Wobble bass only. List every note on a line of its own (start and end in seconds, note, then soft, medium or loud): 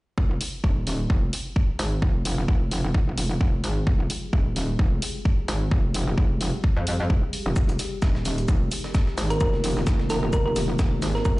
0.18 0.39 F1 medium
0.64 1.08 D#1 medium
1.10 1.31 F1 medium
1.79 2.01 G#1 medium
2.02 2.36 F1 medium
2.38 2.47 F1 medium
2.48 2.82 F1 medium
2.84 3.16 F1 medium
3.18 3.39 F1 loud
3.41 3.62 F1 loud
3.64 3.85 G#1 medium
3.87 4.08 F1 medium
4.33 4.77 D#1 medium
4.79 5.01 F1 medium
5.48 5.70 G#1 medium
5.71 6.05 F1 medium
6.07 6.16 F1 medium
6.18 6.51 F1 medium
6.76 7.08 F2 medium
7.10 7.21 F1 medium
7.46 7.54 F1 medium
7.56 7.78 F1 medium
8.02 8.47 D#1 medium
8.48 8.70 F1 medium
9.18 9.39 G#1 medium
9.41 9.75 F1 loud
9.77 9.85 F1 medium
9.87 10.21 F1 medium
10.23 10.54 F1 medium
10.56 10.78 F1 medium
10.79 11.01 F1 medium
11.02 11.24 G#1 medium
11.25 11.40 F1 loud